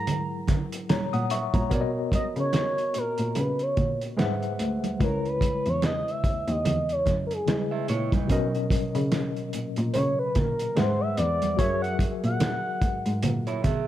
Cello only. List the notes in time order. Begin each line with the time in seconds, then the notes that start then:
Already playing: G#2
0.90 A#2
1.13 A#2
1.54 A#2
1.71 B2
2.36 C#3
2.95 A#2
3.19 A#2
3.36 C#3
3.77 A#2
4.18 G#2
4.59 D2
5.00 C#2
5.66 E2
6.24 D#2
6.48 D#2
6.65 E2
7.07 F#2
7.89 A#2
8.30 B2
8.95 C#3
9.54 A#2
9.78 A#2
9.95 C#3
10.36 A#2
10.77 G#2
11.18 E2
11.59 F#2
12.24 A#2
12.81 G#2
13.05 G#2
13.23 A#2
13.64 B2